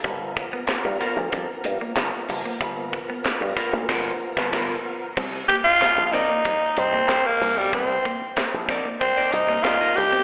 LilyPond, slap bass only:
\new Staff \with { instrumentName = "Slap bass" } { \clef bass \time 4/4 \key g \minor \tempo 4 = 94 g,,8. r8 g,16 r16 d,16 f,16 r16 g,16 r16 g,,16 r16 fis,,16 r16 | g,,8. r8 g,16 r16 d,16 g,,8 r16 g,,16 g,,8 r8 | c,8 r8. bes,,8 r8. c,8 r8 c,16 b,,16 | c,8 r8. bes,,8 r8. c,8 r8 c,16 b,,16 | }